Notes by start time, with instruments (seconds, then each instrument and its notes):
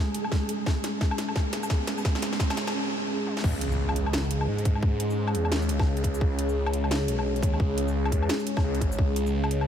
Already playing: synth texture G#3 G#4, analog synth pad G#3 C#4 G#4 C#5, riser
0.14 closed hi-hat
0.24 low woodblock
0.32 kick, snare
0.49 closed hi-hat
0.66 kick, snare
0.84 snare, closed hi-hat
1.01 kick, snare
1.11 low woodblock
1.18 snare, closed hi-hat
1.28 low woodblock
1.36 kick, snare
1.53 snare, closed hi-hat
1.63 low woodblock, shaker
1.70 kick, snare
1.87 snare, closed hi-hat
1.98 low woodblock, shaker
2.05 kick, snare
2.15 snare
2.22 snare, closed hi-hat, shaker
2.33 snare
2.40 kick, snare, shaker
2.50 snare, low woodblock
2.57 snare, closed hi-hat
2.67 snare, low woodblock
3.27 high tom
3.37 snare
3.43 detuned saw bass C#2, analog synth pad G#3, kick, crash, impact
3.61 closed hi-hat
3.72 analog synth pad C#4, shaker
3.89 low woodblock
3.96 closed hi-hat
4.06 low woodblock
4.13 analog synth pad C#5, snare
4.31 closed hi-hat
4.41 low woodblock
4.48 detuned saw bass G#2
4.59 closed hi-hat
4.65 kick, closed hi-hat
4.75 low woodblock
4.83 kick
5.00 closed hi-hat
5.10 shaker
5.28 low woodblock
5.35 detuned saw bass E2, closed hi-hat
5.45 low woodblock
5.52 detuned saw bass D#2, snare
5.62 shaker
5.69 detuned saw bass C#2, closed hi-hat
5.79 kick, snare, low woodblock
5.97 closed hi-hat
6.04 kick, closed hi-hat
6.14 shaker
6.21 kick
6.39 closed hi-hat
6.49 shaker
6.66 low woodblock
6.73 closed hi-hat
6.84 low woodblock
6.91 snare
7.08 detuned saw bass B1, closed hi-hat
7.19 low woodblock
7.36 closed hi-hat
7.43 detuned saw bass D#2, kick, closed hi-hat
7.54 low woodblock
7.60 detuned saw bass C#2, kick
7.78 closed hi-hat
7.88 shaker
8.05 low woodblock
8.12 detuned saw bass E2, kick, closed hi-hat
8.22 low woodblock
8.29 snare
8.40 shaker
8.47 closed hi-hat
8.57 kick, snare, low woodblock
8.64 detuned saw bass C#2
8.75 closed hi-hat
8.81 detuned saw bass G#1, kick, closed hi-hat
8.92 shaker
8.99 detuned saw bass C#2, kick
9.16 closed hi-hat
9.27 shaker
9.44 low woodblock
9.51 closed hi-hat
9.61 low woodblock